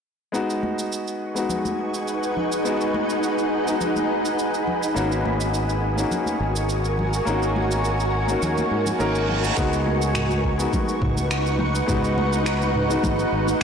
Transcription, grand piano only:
0.32 1.31 G#3 medium
0.32 1.32 B3 medium
0.32 1.33 D#4 medium
0.32 1.33 F#4 medium
1.34 2.61 G#3 medium
1.34 2.62 B3 medium
1.34 2.62 D#4 medium
1.34 2.63 F#4 medium
2.64 3.63 G#3 medium
2.64 3.63 B3 medium
2.64 3.64 D#4 medium
2.64 3.64 F#4 medium
3.66 4.92 G#3 medium
3.66 4.93 B3 medium
3.66 4.93 D#4 medium
3.66 4.94 F#4 medium
4.94 5.93 A#3 medium
4.94 5.94 C#4 medium
4.94 5.95 D#4 medium
4.94 5.95 F#4 medium
5.96 7.23 A#3 medium
5.96 7.23 C#4 medium
5.96 7.24 D#4 medium
5.96 7.25 F#4 medium
7.25 8.24 A#3 medium
7.25 8.25 C#4 medium
7.25 8.25 D#4 medium
7.25 8.26 F#4 medium
8.27 8.96 A#3 medium
8.27 8.97 C#4 medium
8.27 8.98 D#4 medium
8.27 8.98 F#4 medium
8.99 9.54 A#3 medium
8.99 9.54 C#4 medium
8.99 9.54 D#4 medium
8.99 9.55 A#4 loud
9.56 10.55 G#3 medium
9.56 10.56 B3 medium
9.56 10.56 D#4 medium
9.56 10.57 F#4 medium
10.58 11.84 G#3 medium
10.58 11.85 B3 medium
10.58 11.85 D#4 medium
10.58 11.86 F#4 medium
11.86 12.86 G#3 medium
11.86 12.86 B3 medium
11.86 12.87 D#4 medium
11.86 12.87 F#4 medium
12.88 13.63 G#3 medium
12.88 13.63 B3 medium
12.88 13.63 D#4 medium
12.88 13.63 F#4 medium

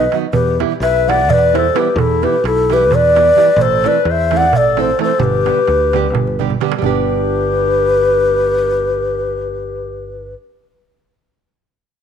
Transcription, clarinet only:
0.00 0.16 B4 medium
0.33 0.57 G4 medium
0.82 1.11 B4 medium
1.09 1.34 D5 medium
1.33 1.60 B4 loud
1.58 1.81 A4 medium
1.80 2.02 G4 medium
2.00 2.26 E4 medium
2.25 2.45 G4 medium
2.47 2.74 E4 medium
2.73 2.97 G4 medium
2.96 3.64 B4 medium
3.62 3.90 A4 medium
3.88 4.11 B4 medium
4.10 4.40 C5 medium
4.38 4.59 D5 medium
4.57 4.81 A4 medium
4.81 5.00 A4 medium
5.01 5.21 A4 medium
5.20 6.39 G4 medium
6.79 10.30 G4 medium

